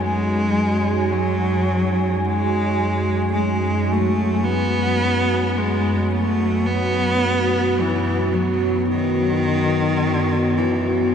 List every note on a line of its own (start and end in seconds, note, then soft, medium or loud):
0.00 11.15 F#2 medium
0.00 11.15 F#3 medium
0.00 1.13 G#3 loud
0.00 11.15 D#4 medium
0.00 11.15 F#4 medium
0.00 11.15 C#5 medium
0.00 7.17 G#5 medium
1.12 2.26 F#3 loud
2.25 3.28 G#3 loud
3.29 3.93 G#3 loud
3.29 3.34 A3 medium
3.92 4.46 A3 loud
4.44 5.59 B3 loud
4.44 11.15 B3 medium
5.58 6.13 G#3 medium
6.11 6.68 A3 loud
6.66 7.82 B3 loud
7.80 8.35 E3 medium
8.33 8.88 F#3 medium
8.89 10.59 D#3 loud
10.57 11.15 E3 medium